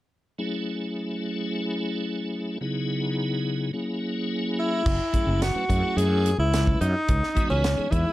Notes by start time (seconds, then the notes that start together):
0.39 F#3 A3 C#4 E4 G#4
2.61 C#3 F#3 B3 D#4 E4 G#4
3.73 F#3 A#3 C#4 E4 G#4
4.60 E4
4.86 F#1, kick, crash
5.13 F#3 A3 C#4 E4 G#4, muted fretless electric bass stroke, kick, closed hi-hat
5.27 F#1
5.42 F#4, snare, closed hi-hat
5.54 F#3 A3 C#4 E4 B4, muted fretless electric bass stroke
5.69 F#2 F#3 A3 C#4 E4 G#4, kick, closed hi-hat
5.97 F#2 G#4, closed hi-hat
6.26 closed hi-hat
6.38 C#2 E4
6.51 E4 G#4, snare, closed hi-hat
6.66 F#3 A3 C#4 E4 B4, kick
6.81 F#2 D#4, closed hi-hat
6.93 E4 G#4
7.08 C#2, kick, closed hi-hat
7.23 snare
7.35 E3 G#3 B3 D#4 F#4, muted fretless electric bass stroke, kick, closed hi-hat
7.50 C#2 C#4
7.64 snare, closed hi-hat
7.77 E3 G#3 B3 D#4 G#4, muted fretless electric bass stroke
7.91 E2 E3 G#3 B3 D#4 E4 G#4, kick, closed hi-hat